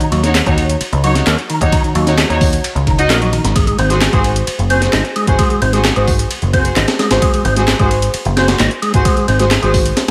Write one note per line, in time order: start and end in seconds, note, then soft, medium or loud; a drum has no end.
0.01 0.11 D#3 loud
0.01 closed hi-hat soft
0.01 ride soft
0.12 0.40 D#2 loud
0.12 0.23 F#3 loud
0.12 ride medium
0.23 0.30 D#3 medium
0.23 0.36 D#4 medium
0.23 0.36 F#4 medium
0.23 0.36 C#5 medium
0.23 snare soft
0.23 closed hi-hat medium
0.35 snare loud
0.35 clap loud
0.35 closed hi-hat medium
0.35 ride medium
0.46 0.74 D#2 medium
0.46 0.57 D#3 medium
0.46 0.55 D#4 medium
0.46 0.55 F#4 medium
0.46 0.55 C#5 medium
0.46 kick loud
0.46 closed hi-hat soft
0.58 ride medium
0.69 closed hi-hat medium
0.69 ride soft
0.81 muted picked electric bass stroke soft
0.81 closed hi-hat medium
0.81 ride medium
0.93 1.20 C#2 loud
0.93 closed hi-hat soft
1.04 1.15 F#3 loud
1.04 1.17 D#4 medium
1.04 1.17 F#4 medium
1.04 1.17 C#5 medium
1.04 ride medium
1.15 snare medium
1.15 closed hi-hat medium
1.27 1.34 D#2 loud
1.27 1.37 A#3 medium
1.27 snare loud
1.27 clap loud
1.27 closed hi-hat medium
1.27 ride medium
1.38 closed hi-hat soft
1.50 1.60 D#3 loud
1.50 ride medium
1.61 1.68 D#2 medium
1.61 1.69 D#4 medium
1.61 1.69 F#4 medium
1.61 1.69 C#5 medium
1.61 kick medium
1.61 closed hi-hat medium
1.72 1.83 D#3 medium
1.72 kick loud
1.72 closed hi-hat medium
1.72 ride medium
1.84 1.94 D#3 loud
1.84 closed hi-hat soft
1.95 2.23 D#2 loud
1.95 2.06 F#3 loud
1.95 ride medium
2.07 2.13 D#3 medium
2.07 2.20 D#4 medium
2.07 2.20 F#4 medium
2.07 2.20 C#5 medium
2.07 snare soft
2.07 closed hi-hat medium
2.18 snare loud
2.18 clap loud
2.18 closed hi-hat medium
2.18 ride medium
2.30 2.57 D#2 medium
2.30 2.40 D#3 medium
2.30 2.38 D#4 medium
2.30 2.38 F#4 medium
2.30 2.38 C#5 medium
2.30 closed hi-hat soft
2.41 kick loud
2.41 open hi-hat medium
2.53 closed hi-hat medium
2.53 ride soft
2.64 closed hi-hat medium
2.64 ride medium
2.75 3.10 C#2 loud
2.75 closed hi-hat soft
2.87 2.98 D#3 medium
2.87 kick medium
2.87 ride medium
2.98 3.06 D#4 loud
2.98 3.06 F#4 medium
2.98 3.06 D#5 loud
2.98 closed hi-hat medium
2.98 ride soft
3.10 3.38 A#1 medium
3.10 3.21 A#3 medium
3.10 snare loud
3.10 clap loud
3.10 closed hi-hat medium
3.10 ride medium
3.21 3.32 F#3 medium
3.21 closed hi-hat soft
3.33 3.43 D#3 loud
3.33 ride medium
3.44 3.72 G#1 loud
3.44 3.55 D#3 medium
3.44 snare soft
3.44 closed hi-hat medium
3.56 3.66 G#3 medium
3.56 kick loud
3.56 closed hi-hat medium
3.56 ride medium
3.67 3.77 G#3 loud
3.67 closed hi-hat soft
3.67 ride soft
3.79 4.06 G#1 loud
3.79 3.90 C4 loud
3.79 ride medium
3.90 3.96 G#3 medium
3.90 4.03 F#4 medium
3.90 4.03 G#4 medium
3.90 4.03 C5 medium
3.90 snare soft
3.90 closed hi-hat medium
4.01 snare loud
4.01 clap loud
4.01 closed hi-hat medium
4.01 ride medium
4.13 4.41 G#1 medium
4.13 4.23 G#3 medium
4.13 4.21 F#4 medium
4.13 4.21 G#4 medium
4.13 4.21 C5 medium
4.13 kick loud
4.13 closed hi-hat soft
4.24 ride medium
4.36 closed hi-hat medium
4.36 ride soft
4.47 muted picked electric bass stroke soft
4.47 closed hi-hat soft
4.47 ride medium
4.59 4.86 F#1 loud
4.59 closed hi-hat soft
4.70 4.81 C4 loud
4.70 4.83 F#4 medium
4.70 4.83 G#4 medium
4.70 4.83 C5 medium
4.70 ride medium
4.82 snare medium
4.82 closed hi-hat medium
4.93 5.00 G#1 loud
4.93 5.04 D#4 medium
4.93 snare loud
4.93 clap loud
4.93 closed hi-hat medium
4.93 ride medium
5.05 closed hi-hat soft
5.16 5.26 G#3 loud
5.16 ride medium
5.27 5.35 G#1 medium
5.27 5.35 F#4 medium
5.27 5.35 G#4 medium
5.27 5.35 C5 medium
5.27 kick loud
5.27 closed hi-hat medium
5.39 5.49 G#3 medium
5.39 kick loud
5.39 closed hi-hat medium
5.39 ride medium
5.50 5.61 G#3 loud
5.50 closed hi-hat soft
5.62 5.90 G#1 loud
5.62 5.73 C4 loud
5.62 ride medium
5.73 5.80 G#3 medium
5.73 5.86 F#4 medium
5.73 5.86 G#4 medium
5.73 5.86 C5 medium
5.73 snare soft
5.73 closed hi-hat medium
5.85 snare loud
5.85 clap loud
5.85 closed hi-hat medium
5.85 ride medium
5.96 6.24 G#1 medium
5.96 6.06 G#3 medium
5.96 6.04 F#4 medium
5.96 6.04 G#4 medium
5.96 6.04 C5 medium
5.96 closed hi-hat soft
6.08 kick loud
6.08 open hi-hat medium
6.19 closed hi-hat medium
6.19 ride soft
6.30 closed hi-hat soft
6.30 ride medium
6.42 6.70 F#1 loud
6.42 closed hi-hat soft
6.53 6.64 C4 loud
6.53 6.66 F#4 medium
6.53 6.66 G#4 medium
6.53 6.66 C5 medium
6.53 kick loud
6.53 ride medium
6.65 closed hi-hat medium
6.65 ride soft
6.76 6.84 G#1 loud
6.76 6.87 D#4 medium
6.76 snare loud
6.76 clap loud
6.76 closed hi-hat medium
6.76 ride medium
6.88 snare loud
6.88 closed hi-hat soft
6.88 ride medium
6.99 7.10 G#3 loud
6.99 snare loud
6.99 ride medium
7.11 7.18 G#1 medium
7.11 7.19 F#4 medium
7.11 7.19 G#4 medium
7.11 7.19 C5 medium
7.11 snare loud
7.11 closed hi-hat medium
7.11 ride medium
7.22 7.32 G#3 medium
7.22 kick loud
7.22 closed hi-hat medium
7.22 ride medium
7.34 7.44 G#3 loud
7.34 closed hi-hat soft
7.34 ride soft
7.45 7.73 G#1 loud
7.45 7.56 C4 loud
7.45 ride medium
7.57 7.63 G#3 medium
7.57 7.69 F#4 medium
7.57 7.69 G#4 medium
7.57 7.69 C5 medium
7.57 snare soft
7.57 closed hi-hat medium
7.68 snare loud
7.68 clap loud
7.68 closed hi-hat medium
7.68 ride medium
7.79 8.07 G#1 medium
7.79 7.90 G#3 medium
7.79 7.88 F#4 medium
7.79 7.87 G#4 medium
7.79 7.87 C5 medium
7.79 kick loud
7.79 closed hi-hat soft
7.91 ride medium
8.02 closed hi-hat medium
8.02 ride soft
8.14 muted picked electric bass stroke soft
8.14 closed hi-hat medium
8.14 ride medium
8.25 8.53 F#1 loud
8.25 closed hi-hat soft
8.37 8.48 C4 loud
8.37 8.49 F#4 medium
8.37 8.50 G#4 medium
8.37 8.49 C5 medium
8.37 snare loud
8.37 ride medium
8.48 snare loud
8.48 closed hi-hat medium
8.48 ride medium
8.59 8.67 G#1 loud
8.59 8.70 D#4 medium
8.59 snare loud
8.59 clap loud
8.59 closed hi-hat medium
8.59 ride medium
8.71 closed hi-hat soft
8.82 8.93 G#3 loud
8.82 ride medium
8.94 9.01 G#1 medium
8.94 9.02 F#4 medium
8.94 9.02 G#4 medium
8.94 9.02 C5 medium
8.94 kick loud
8.94 closed hi-hat medium
9.05 9.16 G#3 medium
9.05 kick loud
9.05 closed hi-hat medium
9.05 ride medium
9.17 9.27 G#3 loud
9.17 closed hi-hat soft
9.28 9.56 G#1 loud
9.28 9.39 C4 loud
9.28 ride medium
9.40 9.46 G#3 medium
9.40 9.52 F#4 medium
9.40 9.52 G#4 medium
9.40 9.52 C5 medium
9.40 snare soft
9.40 closed hi-hat medium
9.51 snare loud
9.51 clap loud
9.51 closed hi-hat medium
9.51 ride medium
9.62 9.90 G#1 medium
9.62 9.73 G#3 medium
9.62 9.70 F#4 medium
9.62 9.70 G#4 medium
9.62 9.70 C5 medium
9.62 closed hi-hat soft
9.74 kick loud
9.74 open hi-hat medium
9.85 closed hi-hat medium
9.85 ride soft
9.97 snare loud
9.97 closed hi-hat medium
9.97 ride medium